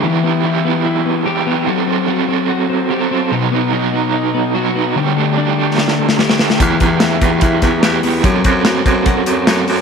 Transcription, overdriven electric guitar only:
X:1
M:4/4
L:1/8
Q:1/4=146
K:Em
V:1 name="Overdriven electric guitar"
[E,B,EG] [B,EG] [E,B,EG] [B,EG]3 [E,B,EG] [B,EG] | [F,CFA] [CFA] [F,CFA] [CFA]3 [F,CFA] [CFA] | [B,,F,B,^DF] [B,DF] [F,B,DF] [B,DF]3 [F,B,DF] [B,DF] | [D,G,A,DG] [A,DG] [G,A,DG] [A,DG]3 [G,A,DG] [A,DG] |
[E,B,EG] [B,EG] [E,B,EG] [B,EG]3 [E,B,EG] [B,EG] | [F,CFA] [CFA] [F,CFA] [CFA]3 [F,CFA] [CFA] |]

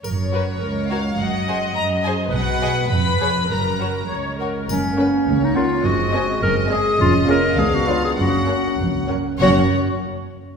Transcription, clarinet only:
X:1
M:2/4
L:1/16
Q:1/4=103
K:F#
V:1 name="Clarinet"
z8 | z8 | z8 | z8 |
C4- C D E2 | F4 A2 G2 | E2 A2 G F E G | F4 z4 |
F2 z6 |]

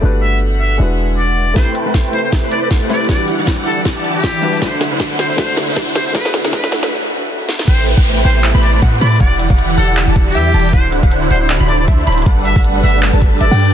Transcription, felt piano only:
X:1
M:4/4
L:1/8
Q:"Swing 16ths" 1/4=157
K:Ador
V:1 name="Felt piano"
[A,DFGB]4 [^G,DEFB]4 | [A,CEGB]6- [A,CEGB] [A,CEGB] | [G,DEFB]6- [G,DEFB] [G,DEFB] | [A,DEFc]4 [A,DEFc]4 |
[A,DEFB]2 [A,DEFB]2 z4 | z8 | z8 | z8 |
z8 |]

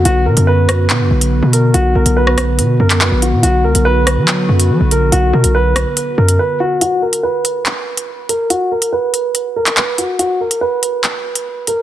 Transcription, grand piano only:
X:1
M:4/4
L:1/8
Q:1/4=142
K:Bm
V:1 name="Grand piano"
F ^A B4- B A | F ^A B3 A B F | F ^A B4- B A | F ^A B3 A B F |
F ^A B4- B A | F ^A B3 A B F | F ^A B4- B A |]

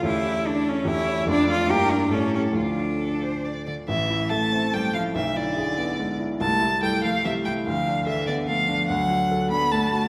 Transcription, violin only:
X:1
M:3/4
L:1/8
Q:1/4=144
K:Dm
V:1 name="Violin"
G2 A2 ^c2 | d2 B2 A2 | F2 A c d d | [K:Am] e2 a2 g f |
e d4 z | a2 g f e g | f2 e d f2 | [K:D] f3 b a2 |]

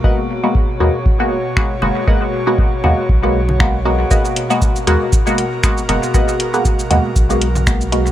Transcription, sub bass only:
X:1
M:4/4
L:1/8
Q:"Swing 16ths" 1/4=118
K:G#m
V:1 name="Sub bass" clef=bass
z2 G,,, D,, z3 F,,, | z2 G,,, D,, B,,,4 | z2 G,,, D,, z3 F,,, | z2 G,,, D,, B,,,4 |]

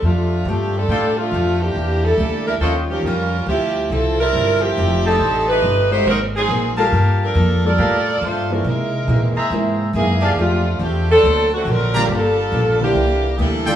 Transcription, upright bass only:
X:1
M:4/4
L:1/8
Q:"Swing" 1/4=139
K:F
V:1 name="Upright bass" clef=bass
F,,2 G,,2 A,,2 F,,2 | E,,2 D,,2 _E,,2 F,,2 | D,,2 C,,2 G,,,2 F,,,2 | A,,,2 G,,,2 _A,,,2 B,,,2 |
G,,2 F,,2 A,,2 G,,2 | C,2 B,, z ^G,,2 _G,,2 | F,,2 E,,2 D,,2 B,,,2 | G,,,2 B,,,2 C,,2 D,,2 |]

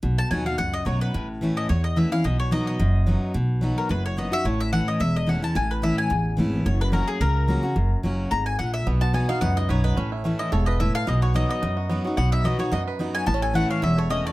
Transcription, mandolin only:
X:1
M:4/4
L:1/8
Q:"Swing" 1/4=218
K:Bmix
V:1 name="Mandolin"
z a g ^e f d c B- | B z2 d c d e ^e | d c d d4- d | z3 ^A B c d e |
c e f d e d f a | g B e g3 z2 | c B ^A G A4- | ^A2 z2 ^a g f e |
z a g ^e f d c B- | B z2 d c d e ^e | d c d d4- d | f e d c d z2 g |
a g f ^e =e c d =d |]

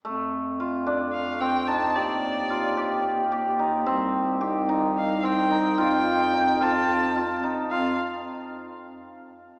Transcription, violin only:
X:1
M:7/8
L:1/8
Q:1/4=110
K:Fmix
V:1 name="Violin"
z4 f g a | d4 z3 | z4 f g2 | g3 a3 z |
f z6 |]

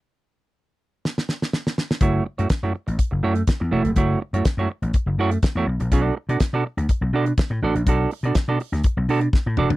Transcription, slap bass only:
X:1
M:4/4
L:1/16
Q:1/4=123
K:F#phr
V:1 name="Slap bass" clef=bass
z16 | F,,,2 z F,, z F,, z A,,, z F,,, F,,2 z E,, E,,, ^E,,, | F,,,2 z F,, z F,, z A,,, z F,,, F,,2 z E,, B,,, ^A,,, | B,,,2 z B,, z B,, z D,, z B,,, B,,2 z A,, A,,, ^A,,, |
B,,,2 z B,, z B,, z D,, z B,,, B,,2 z A,, E,,, ^E,,, |]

